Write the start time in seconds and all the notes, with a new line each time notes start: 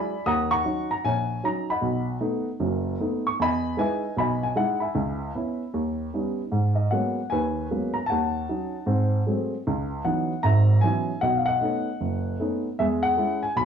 Already playing: F#3 G#3 D4 E4 D5 G#5 B5
0.26 D#2 D#3 F#5 A#5 D#6
0.51 F#5 A#5 C#6
0.65 F#3 C#4 D#4
0.91 A#5
1.05 A#1 C#5 G#5
1.44 F#3 C#4 D#4 A#5
1.70 D#5 F#5 B5
1.81 B1
2.21 A3 B3 D#4
2.60 F#1 F#2
3.00 A3 B3 D#4
3.27 C#6
3.40 E2 D#5 G#5 B5
3.77 G#3 D#4 E4 B4 D#5 G#5
4.17 B1 D#5 G#5 B5
4.43 G#5
4.56 G#3 D#4 E4 F#5
4.80 E5 G#5 B5
4.95 C#2
5.35 B3 C#4 E4
5.74 D#2
6.14 G3 B3 C#4 D#4
6.52 G#2
6.76 D#5
6.91 F#3 G#3 A#3 B3 C#4 F#5
7.30 D#2 D#3 B4 G#5
7.71 F#3 G#3 A#3 B3 C#4
7.93 A#5
8.06 F#5 A5
8.11 D#2
8.49 F#3 C#4 D#4
8.86 G#2 C4
9.26 F#3 G#3 A3 C4
9.67 C#2
10.04 E3 F#3 B3 C#4 D#4 F#5
10.43 G#1 G#2 E5 A#5
10.81 E3 F#3 B3 C#4 D#4 G#5
11.21 B1 D#5 F#5
11.37 F5
11.46 D#5 F#5
11.61 A3 B3 C#4 D#4
12.01 F#1
12.39 A3 B3 C#4 D#4
12.79 E2 G#3 G#4 E5
13.02 F#5
13.17 G#3 C#4 E4
13.43 G#5
13.56 B1 G#5 B5